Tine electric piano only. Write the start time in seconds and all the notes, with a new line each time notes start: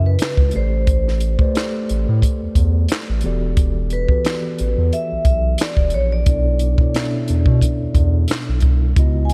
Already playing: C#3 C#4 E4 F#4 B4 C#5 D#5
0.53 A3 G4 A4 C5 D5
1.39 A3 G4 B4 C5 D5
1.54 A3 G4 A4 C5 D5
3.23 E3 B3 F#4 G4 A4 D5
4.08 E3 B3 F#4 G4 A4 B4
4.25 E3 B3 F#4 G4 A4 D5
6.26 B2 B3 D4 E4 A4 D5
6.78 B2 B3 D4 E4 A4 C#5
6.94 B2 B3 C#4 E4 A4 E5
7.02 D4
8.96 C#3 B3 E4 F#4 D#5